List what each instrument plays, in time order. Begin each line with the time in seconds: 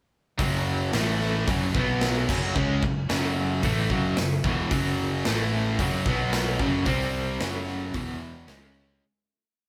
0.39 fingered electric bass F#1, distorted electric guitar F#2 C#3 F#3, kick, open hi-hat
0.93 fingered electric bass A1, distorted electric guitar A2 E3 A3, snare, open hi-hat
1.21 snare
1.48 fingered electric bass F#1, distorted electric guitar F#2 C#3 F#3, kick, open hi-hat
1.74 fingered electric bass B1, distorted electric guitar B2 F#3 B3, kick
2.01 snare, open hi-hat
2.28 fingered electric bass F#1, distorted electric guitar F#2 C#3 F#3, kick, crash
2.56 fingered electric bass C#2, distorted electric guitar C#3 G#3 C#4, kick
2.83 fingered electric bass F#1, distorted electric guitar F#2 C#3, kick
3.09 fingered electric bass F#1, distorted electric guitar F#2 C#3 F#3, snare, open hi-hat
3.63 fingered electric bass A1, distorted electric guitar A2 E3 A3, kick, open hi-hat
3.90 fingered electric bass F#1, distorted electric guitar F#2 C#3 F#3, kick
4.17 fingered electric bass F#1, distorted electric guitar F#2 C#3, snare, open hi-hat
4.44 fingered electric bass E1, distorted electric guitar E2 B2 E3, kick
4.70 fingered electric bass F#1, distorted electric guitar F#2 C#3 F#3, kick, open hi-hat
5.25 fingered electric bass A1, distorted electric guitar A2 E3 A3, snare, open hi-hat
5.79 fingered electric bass F#1, distorted electric guitar F#2 C#3 F#3, kick, open hi-hat
6.06 fingered electric bass B1, distorted electric guitar B2 F#3 B3, kick
6.33 snare, open hi-hat
6.59 fingered electric bass F#1, distorted electric guitar F#2 C#3 F#3, kick
6.86 fingered electric bass C2, distorted electric guitar C3 G3 C4, kick, open hi-hat
7.40 fingered electric bass F#1, distorted electric guitar F#2 C#3 F#3, snare, open hi-hat
7.68 snare
7.94 fingered electric bass E1, distorted electric guitar E2 B2 E3, kick, open hi-hat
8.48 fingered electric bass C#2, distorted electric guitar C#3 G#3 C#4, snare, open hi-hat